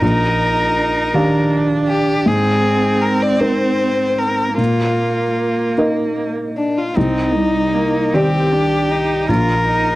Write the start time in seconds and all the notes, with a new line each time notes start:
0.02 A#1 D#4 A#4
1.14 D#3 D4 G4 F5
1.88 G4
2.26 G#2 C4 G#4
3.02 A#4
3.22 D5
3.40 D#4 A#4 C5
4.18 A#4
4.58 A#2 A#3 F4
5.78 D#4 A#4 D#5
6.57 D4
6.78 F4
6.95 C2 C4 D#4
7.35 G3
7.74 A#3
8.13 D#3 C4 G4 D5
8.52 D4
8.91 D#4
9.29 A#1 F4 A#4
9.67 D#4